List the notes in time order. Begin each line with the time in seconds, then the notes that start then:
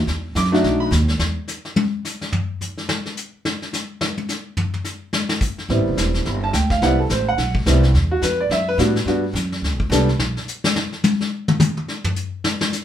0.07 E2, brush sweep, snare
0.35 F#2 D6, snare, hi-hat pedal
0.45 snare
0.52 A3 D4 D#4 F#4, snare
0.63 B1, brush sweep, snare
0.80 B5
0.91 D#2, snare, hi-hat pedal
1.08 snare
1.19 E2, snare
1.48 snare, hi-hat pedal
1.65 snare
1.76 high tom
2.05 snare, hi-hat pedal
2.21 snare
2.32 floor tom
2.61 floor tom, hi-hat pedal
2.78 snare
2.89 snare
3.06 snare
3.17 hi-hat pedal
3.45 snare
3.62 snare
3.73 snare, hi-hat pedal
4.01 snare
4.17 high tom
4.29 snare, hi-hat pedal
4.57 floor tom
4.74 floor tom
4.84 snare, hi-hat pedal
5.13 snare
5.29 snare
5.41 kick, hi-hat pedal
5.58 snare
5.69 A1 G3 B3 C4 E4, brush sweep, snare
5.78 G1
5.88 E1
5.97 E1, snare, hi-hat pedal
6.14 snare
6.25 G1 B5, brush sweep, snare
6.44 A5
6.53 D2 G5, snare, hi-hat pedal
6.70 F5, kick, snare
6.81 C2 G3 B3 C4 E4 F#5, brush sweep, snare
6.99 A4
7.09 A1 C5, snare, hi-hat pedal
7.29 F#5
7.37 B1, brush sweep, snare
7.55 kick
7.66 C2 G3 B3 C4 E4, snare, hi-hat pedal
7.83 snare
7.94 E2, brush sweep, snare
8.11 F#4
8.22 F2 B4, snare, hi-hat pedal
8.40 D5
8.50 F#2 E5, brush sweep, snare
8.68 B4
8.78 A2 G3 B3 D4 F#4, snare, hi-hat pedal
8.96 snare
9.05 G2 G3 B3 D4 F#4, brush sweep, snare
9.33 F#2, snare, hi-hat pedal
9.52 snare
9.61 D2, brush sweep, snare
9.71 B1
9.80 G1, kick
9.90 C2 G3 B3 D4 A4, snare, hi-hat pedal
10.09 snare
10.18 B1, snare
10.37 snare
10.48 hi-hat pedal
10.64 snare
10.76 snare
10.92 snare
11.04 hi-hat pedal, high tom
11.21 snare
11.48 mid tom
11.60 hi-hat pedal, mid tom
11.77 mid tom
11.88 snare
12.04 floor tom
12.16 hi-hat pedal
12.44 snare
12.61 snare
12.72 snare, hi-hat pedal